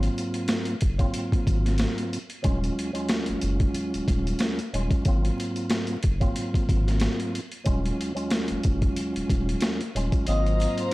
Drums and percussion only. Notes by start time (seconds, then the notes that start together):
0.03 closed hi-hat
0.18 closed hi-hat
0.34 closed hi-hat
0.48 snare, closed hi-hat
0.65 closed hi-hat
0.81 kick, closed hi-hat
0.99 kick, closed hi-hat
1.14 closed hi-hat
1.32 kick, closed hi-hat
1.47 kick, closed hi-hat
1.66 snare, closed hi-hat
1.78 snare, closed hi-hat
1.98 closed hi-hat
2.13 closed hi-hat
2.30 closed hi-hat
2.44 kick, closed hi-hat
2.64 closed hi-hat
2.79 closed hi-hat
2.95 closed hi-hat
3.09 snare, closed hi-hat
3.26 closed hi-hat
3.41 closed hi-hat
3.60 kick, closed hi-hat
3.74 closed hi-hat
3.94 closed hi-hat
4.08 kick, closed hi-hat
4.27 closed hi-hat
4.39 snare, closed hi-hat
4.59 closed hi-hat
4.74 closed hi-hat
4.91 kick, closed hi-hat
5.05 kick, closed hi-hat
5.25 closed hi-hat
5.40 closed hi-hat
5.56 closed hi-hat
5.70 snare, closed hi-hat
5.87 closed hi-hat
6.03 kick, closed hi-hat
6.21 kick, closed hi-hat
6.36 closed hi-hat
6.54 kick, closed hi-hat
6.69 kick, closed hi-hat
6.88 snare, closed hi-hat
7.00 snare, closed hi-hat
7.20 closed hi-hat
7.35 closed hi-hat
7.52 closed hi-hat
7.66 kick, closed hi-hat
7.86 closed hi-hat
8.01 closed hi-hat
8.17 closed hi-hat
8.30 snare, closed hi-hat
8.48 closed hi-hat
8.63 kick, closed hi-hat
8.82 kick, closed hi-hat
8.96 closed hi-hat
9.16 closed hi-hat
9.30 kick, closed hi-hat
9.49 closed hi-hat
9.61 snare, closed hi-hat
9.81 closed hi-hat
9.96 closed hi-hat
10.12 kick, closed hi-hat
10.27 closed hi-hat, sleigh bells
10.46 closed hi-hat
10.60 closed hi-hat, sleigh bells
10.78 closed hi-hat